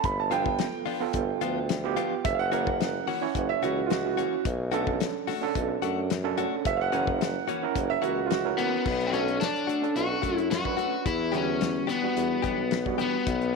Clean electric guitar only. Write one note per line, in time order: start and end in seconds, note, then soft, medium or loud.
0.31 0.49 F3 medium
0.31 0.49 B3 medium
0.31 0.49 D4 medium
0.31 0.48 F4 medium
0.86 1.04 F3 medium
0.86 1.04 B3 medium
0.86 1.04 D4 medium
0.86 1.03 F4 medium
1.41 1.59 F3 medium
1.41 1.59 B3 medium
1.41 1.59 D4 medium
1.41 1.58 F4 medium
1.97 2.14 F3 medium
1.97 2.14 B3 medium
1.97 2.14 D4 medium
1.97 2.14 F4 medium
2.52 2.70 E3 medium
2.52 2.70 A#3 medium
2.52 2.69 C#4 medium
2.52 2.69 F#4 medium
3.08 3.25 E3 medium
3.08 3.25 A#3 medium
3.08 3.25 C#4 medium
3.08 3.24 F#4 medium
3.63 3.81 E3 medium
3.63 3.80 A#3 medium
3.63 3.80 C#4 medium
3.63 3.79 F#4 medium
4.17 4.35 E3 medium
4.17 4.35 A#3 medium
4.17 4.35 C#4 medium
4.17 4.34 F#4 medium
4.72 4.90 A3 medium
4.72 4.90 D4 medium
4.72 4.89 F#4 medium
5.27 5.45 A3 medium
5.27 5.45 D4 medium
5.27 5.44 F#4 medium
5.82 6.00 A3 medium
5.82 6.00 D4 medium
5.82 5.99 F#4 medium
6.38 6.56 A3 medium
6.38 6.55 D4 medium
6.38 6.55 F#4 medium
6.92 7.11 E3 medium
6.92 7.10 A#3 medium
6.92 7.10 C#4 medium
6.92 7.10 F#4 medium
7.48 7.66 E3 medium
7.48 7.66 A#3 medium
7.48 7.65 C#4 medium
7.48 7.65 F#4 medium
8.02 8.20 E3 medium
8.02 8.20 A#3 medium
8.02 8.20 C#4 medium
8.02 8.19 F#4 medium
8.58 8.76 E3 medium
8.58 8.76 A#3 medium
8.58 8.75 C#4 medium
8.58 8.75 F#4 medium
9.13 9.31 A3 medium
9.13 9.30 D4 medium
9.13 9.30 F#4 medium
9.67 9.86 A3 medium
9.67 9.85 D4 medium
9.67 9.85 F#4 medium
10.22 10.41 A3 medium
10.22 10.40 D4 medium
10.22 10.40 F#4 medium
10.77 10.96 A3 medium
10.77 10.95 D4 medium
10.77 10.95 F#4 medium
11.32 11.51 E3 medium
11.32 11.50 B3 medium
11.32 11.50 D4 medium
11.32 11.50 G4 medium
11.87 12.06 E3 medium
11.87 12.06 B3 medium
11.87 12.05 D4 medium
11.87 12.05 G4 medium
12.42 12.61 E3 medium
12.42 12.61 B3 medium
12.42 12.61 D4 medium
12.42 12.60 G4 medium
12.98 13.17 E3 medium
12.98 13.16 B3 medium
12.98 13.16 D4 medium
12.98 13.16 G4 medium